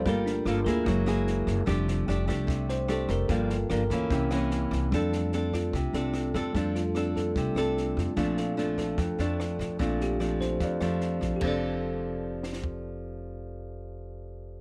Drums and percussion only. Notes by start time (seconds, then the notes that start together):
0.06 kick, snare
0.26 snare
0.46 cross-stick, snare
0.66 kick, snare
0.86 kick, snare
1.07 cross-stick, snare
1.27 snare
1.47 kick, snare
1.67 kick, cross-stick, snare
1.88 snare
2.09 snare
2.28 kick, cross-stick, snare
2.48 kick, snare
2.69 snare
2.88 cross-stick, snare
3.09 kick, snare
3.29 kick, snare
3.50 snare
3.70 cross-stick, snare
3.90 kick, snare
4.11 kick, snare
4.31 cross-stick, snare
4.51 snare
4.72 kick, snare
4.92 kick, cross-stick, snare
5.12 snare
5.32 snare
5.53 kick, cross-stick, snare
5.73 kick, snare
5.94 snare
6.14 cross-stick, snare
6.34 kick, snare
6.55 kick, snare
6.75 snare
6.95 cross-stick, snare
7.16 kick, snare
7.36 kick, snare
7.56 cross-stick, snare
7.77 snare
7.97 kick, snare
8.17 kick, cross-stick, snare
8.37 snare
8.58 snare
8.78 kick, cross-stick, snare
8.98 kick, snare
9.19 snare
9.40 cross-stick, snare
9.59 kick, snare
9.79 kick, snare
10.01 snare
10.20 cross-stick, snare
10.40 kick, snare
10.60 kick, snare
10.81 cross-stick, snare
11.01 snare
11.21 kick, snare
11.41 kick, crash
12.43 snare
12.53 snare
12.64 kick